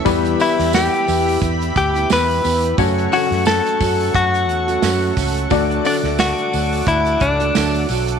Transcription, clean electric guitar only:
X:1
M:4/4
L:1/8
Q:"Swing 16ths" 1/4=88
K:D
V:1 name="Clean electric guitar"
z E G2 z G B2 | z F A2 F3 z | z D F2 E D2 z |]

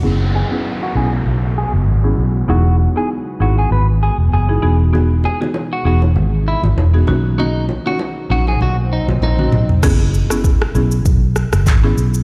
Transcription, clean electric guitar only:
X:1
M:4/4
L:1/16
Q:"Swing 16ths" 1/4=98
K:F#mix
V:1 name="Clean electric guitar"
z2 G z2 F G z3 G z4 z | F2 z G z2 F G B z G z G3 z | z2 G z2 F F z3 E z4 z | D2 z F z2 F G F z D z D3 z |
z16 |]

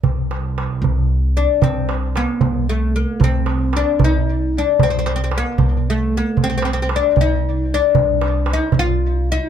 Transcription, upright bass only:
X:1
M:6/8
L:1/8
Q:3/8=76
K:none
V:1 name="Upright bass" clef=bass
C,,3 C,,3 | C,,3 C,,3 | C,,3 C,,3 | C,,3 C,,3 |
C,,3 C,,3 | C,,3 C,,3 |]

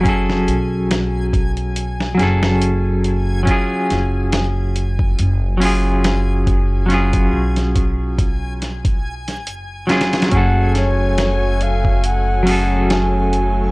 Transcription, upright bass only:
X:1
M:4/4
L:1/8
Q:"Swing 16ths" 1/4=70
K:F#m
V:1 name="Upright bass" clef=bass
F,,, B,,,4 F,,,3 | z F,,,3 F,,,4- | F,,, B,,,4- B,,, F,,,2 | F,,,8 |]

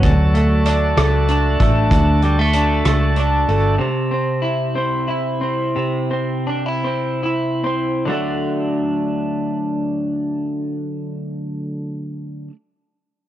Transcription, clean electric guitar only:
X:1
M:6/8
L:1/16
Q:3/8=58
K:D
V:1 name="Clean electric guitar"
z2 A,2 D2 A,2 D2 A,2- | A,2 G, A, D2 A,2 D2 A,2 | =C,2 =C2 E2 C2 E2 C2 | =C,2 =C2 D E C2 E2 C2 |
[D,F,A,D]12- | [D,F,A,D]12 |]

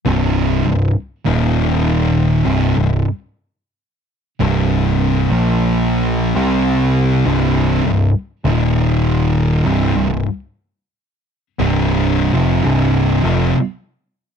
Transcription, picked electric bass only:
X:1
M:4/4
L:1/16
Q:"Swing" 1/4=67
K:Cm
V:1 name="Picked electric bass" clef=bass
C,,,2 C,,,2 z E,,,4- E,,, C,,,2 C,,, z3 | z3 C,,,4 B,,,4- B,,, C,,4 | C,,,2 C,,,2 z E,,,4- E,,, C,,,2 C,,, z3 | z3 C,,,3 F,,,2 C,,,2 F,,,2 z4 |]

